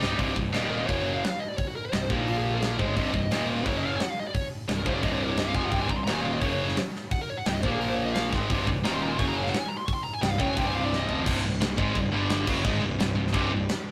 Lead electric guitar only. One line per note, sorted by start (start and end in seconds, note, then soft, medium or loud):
0.55 0.63 D#5 medium
0.62 0.70 G4 medium
0.70 0.79 A#4 medium
0.78 0.86 D#5 medium
0.87 1.12 C#5 medium
1.13 1.24 F5 medium
1.24 1.30 F#5 medium
1.30 1.39 F5 medium
1.40 1.48 D#5 medium
1.48 1.57 D5 medium
1.57 1.66 C#5 medium
1.67 1.75 F#4 soft
1.76 1.84 A#4 medium
1.85 1.93 C#5 medium
1.94 2.01 D#5 medium
2.01 2.10 C5 medium
2.11 2.19 G4 medium
2.18 2.27 D#4 medium
2.30 2.37 F4 medium
2.37 2.44 G#4 medium
2.44 2.53 G4 medium
2.55 2.59 A#4 medium
2.60 2.69 G#4 medium
2.72 2.80 A#4 medium
2.79 2.88 C5 medium
2.88 2.96 C#5 medium
2.98 3.46 D#5 medium
3.68 3.77 C#5 medium
3.77 3.86 D#5 medium
3.86 3.93 F5 medium
3.95 4.02 G#5 loud
4.02 4.10 F#5 medium
4.10 4.18 F5 medium
4.19 4.27 D#5 medium
4.27 4.34 D5 medium
4.34 4.44 C#5 medium
4.78 4.86 A#4 medium
4.86 4.93 C5 medium
4.93 5.03 D5 medium
5.04 5.12 D#5 loud
5.13 5.21 C#5 medium
5.23 5.30 A#4 medium
5.29 5.38 C#5 medium
5.40 5.49 D#5 medium
5.49 5.56 F5 medium
5.55 5.64 G#5 loud
5.65 5.70 F#5 medium
5.70 5.79 G5 medium
5.80 5.89 G#5 medium
5.90 5.96 A#5 medium
5.97 6.04 C6 loud
6.04 6.13 A#5 medium
6.13 6.23 G#5 medium
6.21 6.31 F5 medium
6.32 6.40 D#5 medium
6.40 6.76 C#5 medium
7.12 7.20 F#5 medium
7.21 7.29 A#4 medium
7.30 7.38 C#5 loud
7.37 7.46 F#5 medium
7.46 7.54 G5 loud
7.53 7.62 D#5 medium
7.62 7.68 C5 loud
7.68 7.73 G4 medium
7.74 7.80 G#4 medium
7.80 7.88 A#4 medium
7.89 7.96 C5 medium
7.96 8.05 C#5 medium
8.05 8.14 D#5 medium
8.14 8.25 F5 medium
8.85 8.93 A#5 medium
8.93 9.02 C6 loud
9.03 9.08 A#5 loud
9.07 9.13 G#5 medium
9.12 9.18 C6 loud
9.19 9.27 C#6 loud
9.29 9.37 A#5 medium
9.35 9.43 G#5 medium
9.44 9.49 F5 medium
9.50 9.59 F#5 medium
9.60 9.69 G#5 medium
9.68 9.77 A#5 loud
9.77 9.87 C6 loud
9.87 9.93 C#6 medium
9.94 10.03 C6 medium
10.04 10.13 A#5 loud
10.13 10.22 G#5 medium
10.22 10.31 G5 loud
10.31 10.39 F5 loud
10.40 10.48 G5 loud
10.48 10.57 G#5 loud
10.57 10.66 G5 medium
10.67 10.75 G#5 loud
10.76 10.84 F5 loud
10.84 10.96 D5 medium
10.96 11.20 D#5 medium